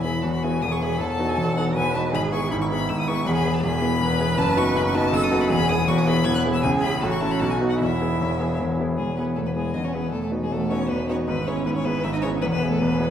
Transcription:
Already playing: E1 E2 E4
0.04 B3 E4 G#4 B5
0.22 E1 E2 F#4 A5
0.34 B5
0.43 B3 E4 G#4 G#5
0.62 E1 E2 G#4 D#6
0.72 C#6
0.81 B3 E4 G#4 B5
0.98 E1 E2 A4 A5
1.10 A5
1.18 B3 D#4 F#4
1.29 G#5
1.38 E1 E2 A5
1.57 B3 D#4 F#4 F#5
1.75 E1 E2 B4 G#5
1.94 B3 D#4 F#4 A5
2.13 G#1 G#2 G#4 B5
2.32 B3 E4 G#4 C#6
2.50 G#1 G#2 E4 B5
2.61 C#6
2.70 B3 E4 G#4 B5
2.89 G#1 G#2 E6
3.00 D#6
3.07 B3 E4 G#4 C#6
3.26 E1 E2 G#4 B5
3.36 B5
3.45 B3 E4 G#4
3.54 A5
3.63 E1 E2 G#4 B5
3.82 B3 E4 G#4
4.00 E1 E2 B4
4.20 B3 E4 G#4
4.38 F#1 F#2 A5
4.56 B3 D#4 F#4 C#6
4.75 F#1 F#2 B5
4.86 C#6
4.94 B3 D#4 F#4 A5
5.13 F#1 F#2 A4 E6
5.23 D#6
5.31 B3 D#4 F#4
5.41 B5
5.50 E1 E2 G#4 B5
5.69 B3 E4 G#4 D#6
5.88 E1 E2 F#4 C#6
5.98 D#6
6.06 B3 E4 G#4 B5
6.24 E1 E2 E4 G#6
6.35 F#6
6.45 B3 E4 G#4
6.53 E6
6.62 C#2 C#3 G#4 G#5
6.82 C#4 E4 G#4 B5
7.01 A1 A2 F#4 A5
7.12 C#6
7.20 C#4 E4 A4 A5
7.31 B5
7.40 B1 B2 A5
7.50 G#5
7.60 B3 D#4 F#4
7.69 F#5
7.79 E1 E2 E4 E5
8.01 B3 E4 G#4
8.21 E1 E2
8.40 B3 E4 G#4
8.59 E1 E2
8.80 B3 E4 G#4
8.97 E1 E2 G#3 G#4
9.17 B3 E4 G#4 B4
9.36 E1 E2 A3 A4
9.46 B3 B4
9.55 G#3 B3 E4 G#4
9.74 E1 E2 D#4 D#5
9.84 C#4 C#5
9.93 B3 E4 G#4 B4
10.12 E1 E2 A3 A4
10.23 A3 A4
10.31 B3 D#4 F#4
10.42 G#3 G#4
10.51 E1 E2 A3 A4
10.70 B3 C#4 D#4 F#4 C#5
10.89 E1 E2 B3 B4
11.08 B3 C#4 D#4 F#4 C#5
11.27 G#1 G#2 B3 B4
11.46 B3 C#4 E4 G#4 C#5
11.66 G#1 G#2 B3 B4
11.75 C#4 C#5
11.85 B3 E4 G#4 B4
12.03 G#1 G#2 E4 E5
12.13 D#4 D#5
12.22 B3 C#4 E4 G#4 C#5
12.42 E1 E2 B3 B4
12.52 B3 B4
12.62 B3 E4 G#4
12.70 A3 A4
12.79 E1 E2 B3 B4
12.99 B3 E4 G#4

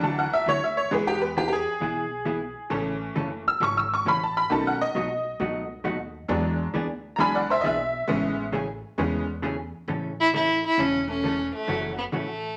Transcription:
Already playing: E3 F#3 D4
0.01 C#2 D3 F#3 A3 E4 F#4 A5
0.19 F#5
0.33 E5
0.46 D2 D3 F#3 A3 E4 F#4 C#5
0.64 E5
0.77 C#5
0.91 E2 E3 G#3 B3 E4 G#4 B4
1.07 G4
1.22 B4
1.37 E3 B3 E4 G4 G#4
1.48 G4
1.53 G#4
1.80 B1 E3 B3 E4 G#4
2.25 E3 B3 E4 G#4
2.70 A1 C#3 E3 A3 C#4 A4
3.16 F#1 C#3 E3 A3 C#4 A4
3.48 E6
3.60 G#1 C#3 E3 A3 C#4 A4 C#6
3.77 E6
3.94 C#6
4.05 A1 C#3 E3 A3 C#4 A4 B5
4.24 A5
4.37 B5
4.50 B1 B2 D#3 F#3 A3 C#4 D#4 F#4 A5
4.67 F#5
4.81 D#5
4.95 B1 B2 F#3 A3 D#4 F#4
5.40 C#2 B2 F#3 A3 D#4 F#4
5.84 D#2 B2 F#3 A3 D#4 F#4
6.29 E2 E3 F#3 G#3 B3 D4 G#4
6.74 D2 E3 B3 D4 G#4
7.16 C#2 E3 F#3 G#3 B3 D4 G#4 G#5 A#5
7.20 B5
7.35 D5 F#5
7.50 C5 E5
7.61 B1 E3 B3 D4 G#4 D#5
7.66 E5
8.08 A1 C#3 E3 G#3 A3 B3 C#4 G#4
8.52 C#3 E3 A3 C#4 G#4
8.98 E2 C#3 E3 G#3 A3 B3 C#4 G#4
9.42 C#3 E3 A3 C#4 G#4
9.88 A1 C#3 E3 A3 C#4 A4
10.20 E4
10.33 C#3 E3 A3 C#4 E4 A4
10.66 E4
10.77 E1 C#3 E3 A3 C#4 A4
11.07 E3 A3 C#4 E4 A4
11.24 C#3 E3 A3 C#4 A4
11.54 A3
11.68 F#1 C#3 E3 F#3 A3 C#4 E4 F#4
11.98 B3
12.12 A1 C#3 E3 A3 C#4 F#4

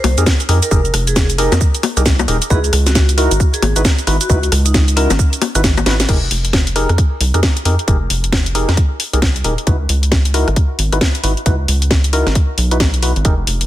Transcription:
Already playing: C5
0.04 C2, open hi-hat, high bongo
0.18 F2 D#4 G4 G#4 A#4, closed hi-hat, cabasa
0.26 kick, snare, cabasa
0.40 closed hi-hat, cabasa
0.49 F2 D#4 G4 G#4 A#4, cross-stick, open hi-hat
0.63 A#4, closed hi-hat, cabasa
0.71 F1 D#4 G4 G#4 A#4, kick, cabasa
0.85 closed hi-hat, cabasa
0.94 F1, cross-stick, open hi-hat
1.07 G#4, closed hi-hat, cabasa
1.16 kick, snare, cabasa
1.30 closed hi-hat, cabasa
1.38 D#4 G4 G#4 A#4, open hi-hat
1.52 F2, snare, closed hi-hat, high bongo, cabasa
1.61 kick, cabasa
1.75 closed hi-hat, cabasa
1.83 open hi-hat, high bongo
1.97 C2 D#4 G4 G#4 A#4, cross-stick, closed hi-hat, cabasa
2.06 kick, snare, cabasa
2.19 closed hi-hat, high bongo, cabasa
2.28 D#1 D#4 G4 G#4 A#4, open hi-hat
2.42 closed hi-hat, cabasa
2.50 C#2 D#4 E4 F#4 G#4 B4, kick, cabasa
2.64 closed hi-hat, cabasa
2.73 C#2, cross-stick, open hi-hat
2.87 F#4, snare, closed hi-hat, cabasa
2.95 kick, snare, cabasa
3.09 closed hi-hat, cabasa
3.18 D#4 E4 F#4 A#4, open hi-hat
3.31 G#1, closed hi-hat, cabasa
3.40 kick, cabasa
3.53 G#4, closed hi-hat, cabasa
3.62 G#1, open hi-hat, high bongo
3.76 G#1 D#4 E4 F#4 B4, closed hi-hat, cabasa
3.85 kick, snare, cabasa
3.98 closed hi-hat, cabasa
4.07 G#1 D#4 E4 F#4 B4, cross-stick, open hi-hat
4.21 F#4, closed hi-hat, cabasa
4.30 C#2 D#4 E4 F#4 B4, kick, cabasa
4.43 closed hi-hat, cabasa
4.52 C#2, cross-stick, open hi-hat
4.65 D#4, closed hi-hat, cabasa
4.74 kick, snare, cabasa
4.88 closed hi-hat, cabasa
4.96 C#4 D#4 E4 F#4 A#4, open hi-hat
5.10 G#1, snare, closed hi-hat, high bongo, cabasa
5.19 kick, cabasa
5.33 closed hi-hat, cabasa
5.42 open hi-hat, high bongo
5.55 G#1 D#4 E4 F#4 B4, cross-stick, closed hi-hat, cabasa
5.64 kick, snare, cabasa
5.78 closed hi-hat, high bongo, cabasa
5.86 G#1 D#4 E4 F#4 B4, snare, open hi-hat
6.00 snare, closed hi-hat, cabasa
6.09 F1 D#4 G4 G#4 A#4, kick, closed hi-hat, crash
6.31 F1, open hi-hat
6.45 closed hi-hat
6.53 kick, snare
6.67 closed hi-hat
6.76 D#4 G4 G#4 A#4, cross-stick, open hi-hat
6.89 F2, cross-stick, closed hi-hat
6.98 kick, closed hi-hat
7.21 C2, open hi-hat
7.34 F2 D#4 G4 G#4 A#4, cross-stick, closed hi-hat
7.43 kick, snare
7.57 closed hi-hat
7.65 F2 D#4 G4 G#4 A#4, open hi-hat
7.79 closed hi-hat
7.88 F1 D#4 G4 G#4 A#4, kick, closed hi-hat
8.10 F1, open hi-hat
8.24 closed hi-hat
8.32 kick, snare
8.46 closed hi-hat
8.55 D#4 G4 G#4 A#4, open hi-hat
8.68 F2, cross-stick, snare, closed hi-hat
8.77 kick, closed hi-hat
9.00 open hi-hat
9.13 C2 D#4 G4 G#4 A#4, closed hi-hat
9.22 kick, snare
9.36 closed hi-hat
9.44 D#1 D#4 G4 G#4 A#4, open hi-hat
9.58 closed hi-hat
9.67 C#2 D#4 E4 F#4 B4, kick, closed hi-hat
9.89 C#2, open hi-hat
10.03 closed hi-hat
10.12 kick, snare
10.25 closed hi-hat
10.34 D#4 E4 F#4 A#4, cross-stick, open hi-hat
10.48 G#1, cross-stick, closed hi-hat
10.56 kick, closed hi-hat
10.79 G#1, open hi-hat
10.92 G#1 D#4 E4 F#4 B4, cross-stick, closed hi-hat
11.01 kick, snare
11.15 closed hi-hat
11.24 G#1 D#4 E4 F#4 B4, open hi-hat
11.37 closed hi-hat
11.46 C#2 D#4 E4 F#4 B4, kick, closed hi-hat
11.68 C#2, open hi-hat
11.82 closed hi-hat
11.91 kick, snare
12.04 closed hi-hat
12.13 D#4 E4 F#4 A#4, open hi-hat
12.27 G#1, cross-stick, snare, closed hi-hat
12.35 kick, closed hi-hat
12.58 B1, open hi-hat
12.71 D#4 E4 F#4 B4, closed hi-hat
12.80 kick, snare
12.94 closed hi-hat
13.03 D#4 E4 F#4 B4, open hi-hat
13.16 G#1, closed hi-hat
13.25 F1 D#4 G4 G#4 A#4, kick, closed hi-hat
13.47 F1, open hi-hat
13.61 closed hi-hat

